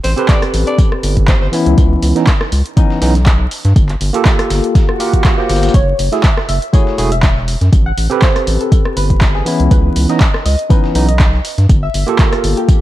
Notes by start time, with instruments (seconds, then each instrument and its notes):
0.04 analog synth bass A1, alto saxophone C5, open hi-hat, tambourine
0.16 tine electric piano C4 G4 A4 B4, alto saxophone C5, closed hi-hat
0.28 alto saxophone D5, kick, snare, clap, closed hi-hat, tambourine
0.42 cross-stick, closed hi-hat
0.54 analog synth bass A1, open hi-hat, tambourine
0.67 alto saxophone D5, closed hi-hat
0.78 kick, closed hi-hat, tambourine
0.92 cross-stick
1.03 analog synth bass G1, open hi-hat, tambourine
1.17 kick, closed hi-hat
1.28 alto saxophone C5, kick, snare, clap, closed hi-hat, tambourine
1.42 alto saxophone C5, snare
1.52 tine electric piano E3 B3 C#4 E4, open hi-hat, tambourine
1.66 analog synth bass C#2, closed hi-hat
1.78 analog synth bass C#2, kick, closed hi-hat, tambourine
2.02 analog synth bass C#2, open hi-hat, tambourine
2.15 tine electric piano E3 B3 C#4 D#4, snare, closed hi-hat
2.27 kick, snare, clap, closed hi-hat, tambourine
2.41 cross-stick, snare
2.52 analog synth bass C#2, open hi-hat, tambourine
2.66 closed hi-hat
2.76 tine electric piano E3 B3 C#4 D#4, kick, closed hi-hat, tambourine
2.90 snare
3.01 analog synth bass B1, tine electric piano E3 B3 C#4 D#4, snare, open hi-hat, tambourine
3.15 snare, closed hi-hat
3.26 kick, clap, closed hi-hat, tambourine
3.51 open hi-hat, tambourine
3.65 analog synth bass G2, snare, closed hi-hat
3.76 analog synth bass G1, kick, closed hi-hat, tambourine
3.89 clap, closed hi-hat
4.01 analog synth bass G1, open hi-hat, tambourine
4.13 tine electric piano A#3 F4 G4 A4, closed hi-hat
4.25 kick, snare, clap, closed hi-hat, tambourine
4.39 cross-stick, closed hi-hat
4.50 analog synth bass G1, snare, open hi-hat, tambourine
4.64 closed hi-hat
4.75 kick, snare, closed hi-hat, tambourine, swell
4.89 cross-stick
4.99 tine electric piano A#3 F4 G4 A#4, open hi-hat, tambourine
5.13 kick, closed hi-hat
5.24 kick, snare, clap, closed hi-hat, tambourine
5.38 tine electric piano A#3 F4 G4 C5, snare
5.49 analog synth bass G1, snare, open hi-hat, tambourine
5.56 snare, tambourine
5.63 snare, closed hi-hat, tambourine
5.69 snare, tambourine
5.74 analog synth bass F#1, synth pluck C#5, kick, closed hi-hat, tambourine
5.99 analog synth bass F#1, open hi-hat, tambourine
6.12 tine electric piano A3 E4 F#4 G#4, synth pluck E5, snare, closed hi-hat
6.23 kick, snare, clap, closed hi-hat, tambourine
6.37 cross-stick, snare
6.49 analog synth bass F#1, synth pluck E5, open hi-hat, tambourine
6.62 closed hi-hat
6.73 tine electric piano A3 E4 F#4 G#4, synth pluck C#5, kick, closed hi-hat, tambourine
6.87 snare
6.98 analog synth bass E1, tine electric piano A3 E4 F#4 G#4, open hi-hat, tambourine
7.12 synth pluck E5, closed hi-hat
7.23 kick, snare, clap, closed hi-hat, tambourine
7.37 snare
7.48 open hi-hat, tambourine
7.61 analog synth bass F#2, snare, closed hi-hat
7.73 analog synth bass A1, kick, closed hi-hat, tambourine
7.86 synth pluck F#5
7.97 analog synth bass A1, open hi-hat, tambourine
8.10 tine electric piano C4 G4 A4 B4, closed hi-hat
8.22 synth pluck C5, kick, snare, clap, closed hi-hat, tambourine
8.36 cross-stick, closed hi-hat
8.47 analog synth bass A1, open hi-hat, tambourine
8.61 synth pluck A4, closed hi-hat
8.72 kick, closed hi-hat, tambourine
8.85 cross-stick
8.97 analog synth bass G1, synth pluck B4, open hi-hat, tambourine
9.10 kick, closed hi-hat
9.21 kick, snare, clap, closed hi-hat, tambourine
9.35 synth pluck G#4, snare
9.45 tine electric piano E3 B3 C#4 E4, open hi-hat, tambourine
9.60 analog synth bass C#2, closed hi-hat
9.71 analog synth bass C#2, synth pluck B4, kick, closed hi-hat, tambourine
9.96 analog synth bass C#2, open hi-hat, tambourine
10.09 tine electric piano E3 B3 C#4 D#4, synth pluck D#5, snare, closed hi-hat
10.20 kick, snare, clap, closed hi-hat, tambourine
10.34 cross-stick, snare
10.45 analog synth bass C#2, synth pluck D#5, open hi-hat, tambourine
10.59 closed hi-hat
10.70 tine electric piano E3 B3 C#4 D#4, synth pluck B4, kick, closed hi-hat, tambourine
10.84 snare
10.95 analog synth bass B1, tine electric piano E3 B3 C#4 D#4, open hi-hat, tambourine
11.08 synth pluck D#5, closed hi-hat
11.19 kick, snare, clap, closed hi-hat, tambourine
11.33 snare
11.45 open hi-hat, tambourine
11.58 analog synth bass G2, snare, closed hi-hat
11.69 analog synth bass G1, kick, closed hi-hat, tambourine
11.83 synth pluck E5
11.94 analog synth bass G1, open hi-hat, tambourine
12.06 tine electric piano A#3 F4 G4 A4, closed hi-hat
12.18 synth pluck A#4, kick, snare, clap, closed hi-hat, tambourine
12.32 cross-stick, closed hi-hat
12.44 analog synth bass G1, open hi-hat, tambourine
12.57 synth pluck G4, closed hi-hat
12.69 kick, closed hi-hat, tambourine